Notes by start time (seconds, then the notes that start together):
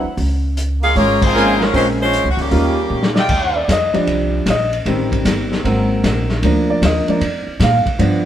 0.03 muted upright bass stroke
0.17 C#2, kick, open hi-hat
0.57 closed hi-hat
0.81 G#3 A#3 C#4 F4 G#4 A#4 F5, open hi-hat
0.95 G#1 G#3 A#3 C#4 F4 G#4 C#5, kick, open hi-hat
1.22 F3 G#3 A#3 C4 F4 G#4 C5, kick, crash
1.34 G#3 A#3 C#4 F4 A#4 C#5 G#5
1.60 A#2 F3 G#3 A#3 C#4 F4 A#4, snare
1.73 A#1 F3 G#3 C4 C#4 F4 A#4 C5, kick, open hi-hat
1.99 F3 G#3 C#4 F4 C5
2.13 closed hi-hat
2.24 C2
2.31 F#4
2.37 C#2 A#2 C#3 G3 C#4, open hi-hat
2.41 D#3 A#3 G4
2.51 D#2 G3 A#3 C#4 D#4 F4, kick, open hi-hat
2.90 A#2
3.03 snare
3.15 F4 D5 D#5 G5, snare
3.29 D#2, kick, crash
3.56 D5
3.68 F2 D#5, kick, snare, hi-hat pedal, ride
3.93 F3 G3 D4 D5, muted upright bass stroke, ride
4.07 C2, kick, ride
4.46 A#1, kick, snare, hi-hat pedal, ride
4.50 D#5
4.73 ride
4.85 A1 D#3 G3 C4, kick, ride
5.12 kick, ride
5.25 G1, kick, snare, hi-hat pedal, ride
5.52 snare
5.64 G#1 F#3 A#3 C4, kick, ride
6.04 A#1, kick, snare, hi-hat pedal, ride
6.29 snare
6.42 D2 F3 A#3 D4, kick, ride
6.70 D5
6.82 D#2 D#5, kick, snare, hi-hat pedal, ride
7.07 F3 A#3 D4 D5, muted upright bass stroke, ride
7.20 F2, kick, ride
7.47 muted upright bass stroke
7.60 A#2 F5, kick, snare, hi-hat pedal, ride
7.86 muted upright bass stroke, kick, ride
7.99 G2 F3 B3 D4, kick, ride